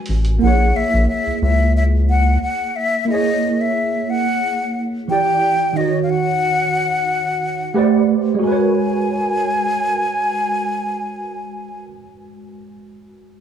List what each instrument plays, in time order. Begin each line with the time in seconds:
Already playing: tine electric piano G#3 F#4 A#4 B4 C#5
0.06 analog synth bass A1, open hi-hat
0.25 closed hi-hat
0.38 tine electric piano A#3 E4, flute F#5
0.43 analog synth bass A#1, tine electric piano G#4
0.47 tine electric piano C#5
0.76 analog synth bass A#1, flute E5
0.94 analog synth bass A#1
1.09 flute E5
1.27 analog synth bass C#2
1.42 analog synth bass C#2, flute E5
1.77 flute E5
2.10 flute F#5
2.42 flute F#5
2.76 flute E5
3.05 tine electric piano A#3 E4
3.10 tine electric piano G#4 C#5, flute D#5
3.61 flute E5
4.10 flute F#5
5.08 tine electric piano E3 E4 G4, flute G5
5.12 tine electric piano D5
5.73 tine electric piano D#3 D#4, flute D#5
5.78 tine electric piano F#4 C#5
6.03 flute F5
6.10 flute F#5
7.74 tine electric piano A3 G4 B4 C5 D5
8.34 tine electric piano G#3
8.39 tine electric piano F#4, flute G#5
8.43 tine electric piano A#4
8.47 tine electric piano B4
8.51 tine electric piano C#5